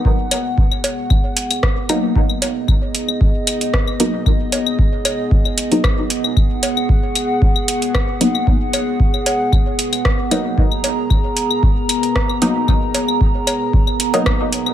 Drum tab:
HH |--x---x---xx--x-|--x---x---xx--x-|--x---x---xx--x-|--x---x---xx--x-|
CB |--x---x---------|--x-------------|--x---x---------|--x-------------|
CL |--x--x--x--x--x-|-x--x--x--x--x--|x--x--x--x--x--x|x--x--x--x--x--x|
SD |------------r---|------------r---|------------r---|------------r---|
BD |o---o---o---o---|o---o---o---o---|o---o---o---o---|o---o---o---o---|

HH |--x---x---xx--x-|--x---x---xx--x-|--x---x---xx--x-|
CB |--x---x---------|--x-------------|--x---x----x----|
CL |--x--x--x--x--x-|-x--x--x--x--x--|x--x--x--x--x--x|
SD |------------r---|------------r---|------------r---|
BD |o---o---o---o---|o---o---o---o---|o---o---o---o---|